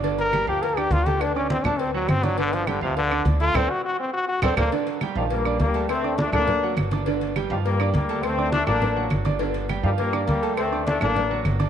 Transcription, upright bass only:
X:1
M:4/4
L:1/8
Q:1/4=205
K:Gm
V:1 name="Upright bass" clef=bass
G,,,3 D,,3 D,,2- | D,,3 D,,3 G,,,2- | G,,,3 D,,3 D,,2 | D,, z4 z D,, D,, |
z3 B,,,3 D,,2- | D,,3 D,,3 G,,,2- | G,,,3 G,,3 D,,2- | D,,3 A,,,3 G,,,2- |
G,,,3 G,,3 D,,2- | D,,3 A,,,3 G,,,2 |]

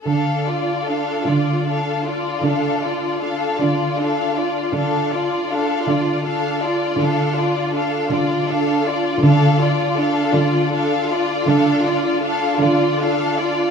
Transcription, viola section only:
X:1
M:12/8
L:1/8
Q:3/8=53
K:Dm
V:1 name="Viola section"
D F D F D F D F D F D F | D F D F D F D F D F D F | D F D F D F D F D F D F |]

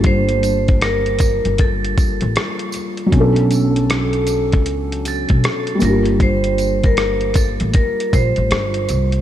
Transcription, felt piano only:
X:1
M:4/4
L:1/8
Q:"Swing 16ths" 1/4=78
K:Glyd
V:1 name="Felt piano"
[G,_B,D=FG]6- [G,B,DFG] z | [F,B,CDA]6- [F,B,CDA] [G,_B,D=FG]- | [G,_B,D=FG]6- [G,B,DFG] z |]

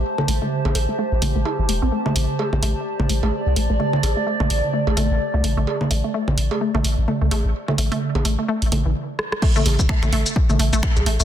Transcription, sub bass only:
X:1
M:4/4
L:1/16
Q:"Swing 16ths" 1/4=128
K:Am
V:1 name="Sub bass" clef=bass
z2 A,,, z2 A,,, A,,, z2 A,,, A,,, A,,, z G,,, E,,, A,,, | z2 A,,, z2 A,,, A,,, z2 A,,, A,,, A,,, z C,, A,,, A,,, | z2 A,,, z2 A,,, A,,, z2 A,,, A,,, A,,, z C,, A,,, A,,, | z2 A,,, z2 A,,, A,,, z2 A,,, A,,, A,,, z C,, A,,, A,,, |
z2 A,,, z2 A,,, A,,, z2 A,,, A,,, A,,, z4 | z2 A,,, z2 A,,, A,,, z2 A,,, A,,, A,,, z C,, A,,, A,,, |]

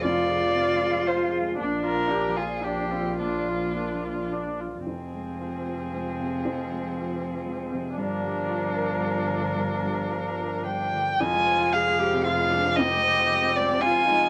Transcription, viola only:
X:1
M:3/4
L:1/8
Q:1/4=114
K:Fdor
V:1 name="Viola"
F A F A F A | D F D F D F | D F D F D F | C6- |
C6 | D6- | D4- D z | F2 A A3 |
G4 F2 |]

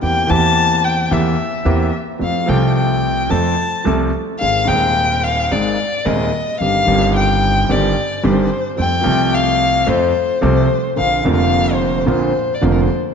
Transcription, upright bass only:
X:1
M:4/4
L:1/8
Q:1/4=110
K:Fmix
V:1 name="Upright bass" clef=bass
=E,, E,,3 E,, z E,, z | F,, C,,3 F,, z C,, z | _A,,, E,,3 A,,, z E,, z | G,,, G,,,3 G,,, z G,,, z |
F,, C,,3 F,, z C,, z | B,,, F,,,3 B,,, z F,,, z |]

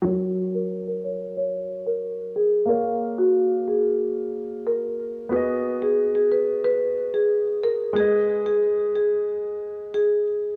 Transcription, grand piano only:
X:1
M:4/4
L:1/8
Q:1/4=91
K:F#
V:1 name="Grand piano"
[F,FAc]8 | [A,Ace]8 | [B,FGd]8 | [G,GBd]8 |]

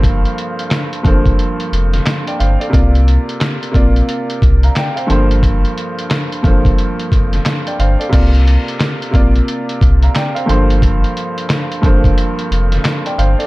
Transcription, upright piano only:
X:1
M:4/4
L:1/16
Q:"Swing 16ths" 1/4=89
K:Gm
V:1 name="Upright piano"
z12 z [dg] [cf] [Ad]- | [Ad] z8 z2 [fb] [dg] [cf]2 z | z12 z [dg] [cf] [Ad]- | [Ad] z8 z2 [fb] [dg] [cf]2 z |
z12 z [dg] [cf] [Ad] |]
V:2 name="Upright piano"
[G,,F,B,Ac]4 z2 [G,,F,B,Ac]4 z6 | [C,B,Fd]4 z2 [C,B,Fd]4 z4 [G,,F,B,Ac]2- | [G,,F,B,Ac]4 z2 [G,,F,B,Ac]4 z6 | [C,B,Fd]4 z2 [C,B,Fd]4 z4 [G,,F,B,Ac]2- |
[G,,F,B,Ac]4 z2 [G,,F,B,Ac]4 z6 |]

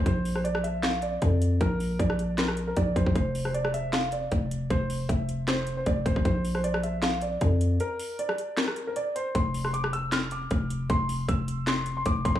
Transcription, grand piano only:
X:1
M:4/4
L:1/16
Q:1/4=155
K:Bblyd
V:1 name="Grand piano"
c3 c d2 e2 f2 d6 | B4 d4 B3 B d2 c2 | c3 c d2 e2 f2 d6 | c4 e4 c3 c d2 c2 |
c3 c d2 e2 f2 d6 | B4 d4 B3 B d2 c2 | c'3 c' d'2 e'2 f'2 d'6 | c'4 e'4 c'3 c' d'2 c'2 |]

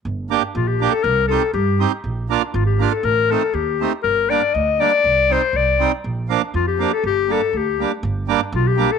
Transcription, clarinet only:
X:1
M:2/4
L:1/16
Q:1/4=120
K:Gm
V:1 name="Clarinet"
z4 F G2 A | B2 A2 G3 z | z4 F G2 A | B2 A2 G3 z |
B2 d2 e2 d2- | d2 c2 d3 z | z4 F G2 A | G2 A2 G3 z |
z4 F G2 A |]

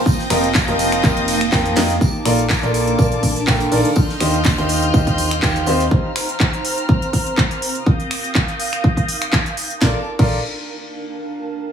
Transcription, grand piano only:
X:1
M:4/4
L:1/16
Q:"Swing 16ths" 1/4=123
K:Bb
V:1 name="Grand piano"
z2 [F,FGBe] z2 [F,FGBe]3 [F,FGBe]3 z [F,FGBg]2 [B,FGBe] z | z2 [B,FABd] z2 [B,FABd]3 [B,FABd]3 z [B,FABg]2 [E,FABd] z | z2 [E,FGce] z2 [E,FGce]3 [E,FGce]3 z [E,FGcg]2 [CFGce] z | z16 |
z16 | [FABd] z2 [FABd]2 z8 z3 |]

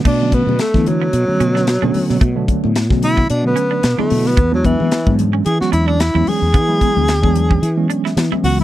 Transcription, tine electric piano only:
X:1
M:4/4
L:1/16
Q:"Swing 16ths" 1/4=111
K:Bdor
V:1 name="Tine electric piano" clef=bass
z [D,F,A,B,C]3 z [D,F,A,B,D]3 z [D,F,A,B,C]3 z [D,F,A,B,C]3 | z [D,F,A,B,D]3 z [D,F,A,B,C]3 z [D,F,A,B,C]3 z [D,F,A,B,E]3 | z [E,F,G,B,D]3 z [E,F,G,B,D]3 z [E,F,G,B,C]3 z [E,F,G,B,C]3 | z [E,F,G,B,E]3 z [E,F,G,B,D]3 z [E,F,G,B,C]3 z [E,F,G,B,C]3 |]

